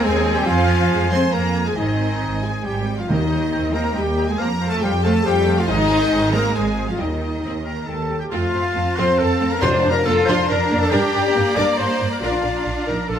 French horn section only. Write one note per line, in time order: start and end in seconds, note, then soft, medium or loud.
0.03 0.36 G#4 loud
0.37 0.42 G4 loud
0.46 1.10 F4 loud
1.11 1.33 C5 loud
1.33 1.66 A#4 loud
1.68 1.72 G#4 loud
1.77 2.42 D#4 loud
2.44 2.66 G#4 medium
2.65 2.98 G4 medium
2.99 3.09 F4 medium
3.10 3.75 D#4 medium
3.75 3.96 A#4 loud
3.97 4.28 G4 loud
4.30 4.40 G#4 loud
4.38 4.51 A#4 medium
4.67 4.82 A4 loud
4.81 5.04 G4 loud
5.04 5.26 A4 loud
5.25 5.58 G4 loud
5.59 5.69 F4 loud
5.68 6.33 D#4 loud
6.33 6.54 A#4 loud
6.54 6.88 G#4 loud
6.89 6.99 F4 medium
7.00 7.66 D#4 medium
7.64 7.85 A#4 medium
7.88 8.20 A4 medium
8.23 8.33 G4 medium
8.34 8.97 F4 loud
8.99 9.19 C5 loud
9.21 9.52 A4 loud
9.54 9.63 A#4 loud
9.64 9.92 C5 loud
9.93 10.06 A#4 loud
10.07 10.27 A4 loud
10.30 10.50 C5 loud
10.50 10.81 A#4 loud
10.83 10.92 A4 loud
10.93 11.56 G4 loud
11.56 11.78 D5 loud
11.80 12.11 C5 loud
12.14 12.23 A#4 medium
12.22 12.70 F4 loud
12.87 12.97 A#4 loud
13.10 13.19 A4 medium